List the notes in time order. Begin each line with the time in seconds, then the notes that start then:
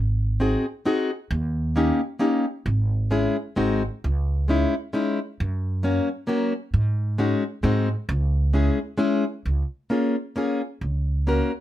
Already playing: G#1
0.40 C4 D#4 F#4 G#4
0.85 C4 D#4 F#4 G#4
1.31 D#2
1.76 A#3 C#4 D#4 G4
2.19 A#3 C#4 D#4 G4
2.66 G#1
3.11 G#3 C#4 E4 G#4
3.56 G#1 G#3 C4 D#4 F#4
4.04 C#2
4.48 G#3 C#4 D#4 E4
4.93 G#3 C#4 D#4 E4
5.40 F#2
5.83 F#3 A#3 C#4 F#4
6.27 F#3 A#3 C#4 F#4
6.74 G#2
7.18 G#3 C#4 D#4 F#4
7.63 G#2 G#3 C4 D#4 F#4
8.09 C#2
8.53 G#3 C#4 E4 G#4
8.98 G#3 C#4 E4 G#4
9.45 C#2
9.90 A#3 C#4 F4 G#4
10.36 A#3 C#4 F4 G#4
10.81 C#2
11.27 A#3 C#4 F#4 A#4